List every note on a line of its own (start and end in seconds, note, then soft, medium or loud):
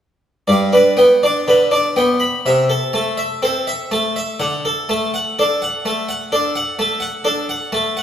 0.47 0.72 G2 soft
0.47 0.74 D5 soft
0.73 0.99 D4 soft
0.73 0.99 B4 soft
0.97 1.23 B3 soft
0.97 1.23 G5 soft
1.23 1.49 D4 soft
1.23 1.49 D5 soft
1.48 1.74 D3 soft
1.48 1.74 B4 soft
1.71 1.98 D4 soft
1.71 1.98 D5 soft
1.96 2.23 B3 soft
1.96 2.22 G5 soft
2.20 2.45 B5 soft
2.46 2.69 C3 soft
2.46 2.72 E5 soft
2.70 2.96 A4 soft
2.93 3.20 A3 soft
2.93 3.20 A5 medium
3.17 3.44 E5 soft
3.42 3.68 C4 soft
3.42 3.69 A4 soft
3.67 3.93 E5 soft
3.91 4.17 A3 soft
3.91 4.17 A5 soft
4.16 4.40 E5 soft
4.40 4.63 D3 soft
4.40 4.65 F#5 soft
4.65 4.90 A4 soft
4.89 5.14 A3 soft
4.89 5.14 A5 medium
5.14 5.39 F#5 soft
5.39 5.63 D4 soft
5.39 5.63 A4 soft
5.62 5.87 F#5 soft
5.85 6.10 A3 soft
5.85 6.10 A5 soft
6.09 6.33 F#5 soft
6.32 6.57 D4 soft
6.32 6.57 A4 soft
6.55 6.80 F#5 soft
6.79 7.03 A3 soft
6.79 7.03 A5 soft
7.00 7.26 F#5 soft
7.24 7.50 D4 soft
7.24 7.50 A4 soft
7.49 7.74 F#5 soft
7.72 7.98 A3 soft
7.72 7.98 A5 soft
7.97 8.03 F#5 soft